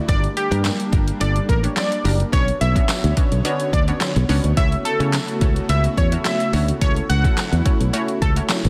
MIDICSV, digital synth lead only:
0, 0, Header, 1, 2, 480
1, 0, Start_track
1, 0, Tempo, 560748
1, 74, Time_signature, 4, 2, 24, 8
1, 7440, End_track
2, 0, Start_track
2, 0, Title_t, "Digital synth lead"
2, 0, Program_c, 0, 84
2, 74, Note_on_c, 0, 74, 111
2, 237, Note_off_c, 0, 74, 0
2, 315, Note_on_c, 0, 67, 87
2, 766, Note_off_c, 0, 67, 0
2, 1036, Note_on_c, 0, 74, 89
2, 1199, Note_off_c, 0, 74, 0
2, 1276, Note_on_c, 0, 70, 82
2, 1362, Note_off_c, 0, 70, 0
2, 1516, Note_on_c, 0, 74, 77
2, 1860, Note_off_c, 0, 74, 0
2, 1994, Note_on_c, 0, 73, 117
2, 2157, Note_off_c, 0, 73, 0
2, 2234, Note_on_c, 0, 76, 83
2, 2685, Note_off_c, 0, 76, 0
2, 3194, Note_on_c, 0, 74, 76
2, 3280, Note_off_c, 0, 74, 0
2, 3912, Note_on_c, 0, 76, 110
2, 4076, Note_off_c, 0, 76, 0
2, 4152, Note_on_c, 0, 69, 83
2, 4604, Note_off_c, 0, 69, 0
2, 4875, Note_on_c, 0, 76, 85
2, 5037, Note_off_c, 0, 76, 0
2, 5116, Note_on_c, 0, 73, 74
2, 5202, Note_off_c, 0, 73, 0
2, 5355, Note_on_c, 0, 76, 79
2, 5700, Note_off_c, 0, 76, 0
2, 5833, Note_on_c, 0, 73, 110
2, 5996, Note_off_c, 0, 73, 0
2, 6073, Note_on_c, 0, 78, 97
2, 6524, Note_off_c, 0, 78, 0
2, 7034, Note_on_c, 0, 69, 77
2, 7120, Note_off_c, 0, 69, 0
2, 7440, End_track
0, 0, End_of_file